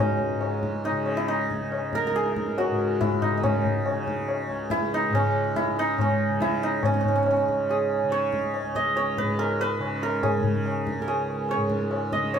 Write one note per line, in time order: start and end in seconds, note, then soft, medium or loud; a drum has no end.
0.00 2.11 C#2 medium
0.00 0.31 G#2 medium
0.00 0.92 C#3 medium
0.00 3.43 C#4 medium
0.00 0.85 D#4 medium
0.00 2.38 F#4 medium
0.00 1.71 G#4 medium
0.00 1.31 A#4 medium
0.20 tabla ge medium
0.32 2.70 G#2 medium
0.41 tabla na medium
0.63 tabla ke medium
0.84 1.23 D#4 medium
0.84 tabla na medium
0.92 1.52 C#3 medium
1.06 tabla na medium
1.17 1.34 E4 medium
1.28 3.07 D#4 medium
1.28 tabla na medium
1.50 3.31 C#3 medium
1.50 tabla ke medium
1.72 tabla na medium
1.93 2.07 A#4 loud
1.93 tabla ke medium
2.07 4.91 A#4 medium
2.11 4.49 C#2 medium
2.11 tabla te medium
2.16 5.19 G#4 medium
2.26 tabla te medium
2.36 tabla ke medium
2.46 tabla te medium
2.58 5.83 F#4 medium
2.58 tabla na medium
2.70 5.09 G#2 medium
2.79 tabla na medium
3.01 3.28 E4 medium
3.01 tabla na medium
3.01 tabla ge medium
3.22 3.37 D#4 medium
3.22 tabla ge soft
3.31 3.92 C#3 medium
3.37 4.77 D#4 medium
3.43 5.14 C#4 medium
3.43 tabla na medium
3.43 tabla ge medium
3.65 tabla ge medium
3.86 tabla na medium
3.92 5.69 C#3 medium
4.07 tabla ke medium
4.28 tabla na medium
4.49 8.62 C#2 medium
4.49 tabla na medium
4.70 5.00 E4 loud
4.70 tabla ke medium
4.92 5.62 D#4 medium
4.92 tabla te medium
5.09 6.85 G#2 medium
5.13 6.01 C#4 medium
5.13 tabla na medium
5.13 tabla ge medium
5.56 5.85 E4 medium
5.56 tabla ke medium
5.69 6.30 C#3 soft
5.77 6.48 D#4 loud
5.77 tabla te medium
5.99 6.85 C#4 medium
5.99 tabla na medium
5.99 tabla ge medium
6.30 7.44 C#3 medium
6.41 6.69 E4 loud
6.41 tabla ke medium
6.62 10.23 D#4 medium
6.62 tabla te medium
6.83 9.22 G#2 medium
6.83 6.93 C#4 medium
6.83 tabla na medium
6.83 tabla ge medium
6.94 7.00 C#4 medium
7.01 7.08 C#4 medium
7.05 7.15 C#4 medium
7.05 tabla ge medium
7.16 7.22 C#4 medium
7.23 7.30 C#4 medium
7.23 tabla na medium
7.31 7.36 C#4 medium
7.37 11.23 C#4 soft
7.44 8.04 C#3 medium
7.49 tabla ke soft
7.69 10.23 G#4 medium
7.69 tabla na medium
7.90 tabla na medium
8.04 9.79 C#3 medium
8.11 8.96 C#5 medium
8.11 tabla na medium
8.33 tabla ke medium
8.54 tabla na medium
8.63 10.98 C#2 medium
8.75 11.13 D#5 medium
8.75 tabla ke medium
8.96 11.50 C#5 medium
8.96 tabla na medium
9.17 9.45 B4 medium
9.17 tabla ke medium
9.23 11.56 G#2 medium
9.39 9.67 A#4 medium
9.39 tabla na medium
9.60 10.09 B4 medium
9.60 tabla na medium
9.79 10.40 C#3 medium
9.79 tabla na medium
10.02 11.01 A#4 medium
10.02 tabla te medium
10.23 11.07 G#4 medium
10.23 tabla na medium
10.23 tabla ge medium
10.40 12.16 C#3 medium
10.40 tabla ge medium
10.66 tabla na medium
10.87 tabla ke medium
10.98 12.39 C#2 medium
10.98 12.39 A#4 medium
11.08 12.39 G#4 medium
11.08 tabla na medium
11.29 tabla na medium
11.49 12.34 C#5 medium
11.49 tabla na medium
11.57 12.39 G#2 medium
11.70 tabla ke medium
11.91 tabla na medium
12.12 12.39 C#3 medium
12.12 12.39 D#5 medium
12.12 tabla ke medium
12.34 12.39 C#5 medium
12.34 tabla na medium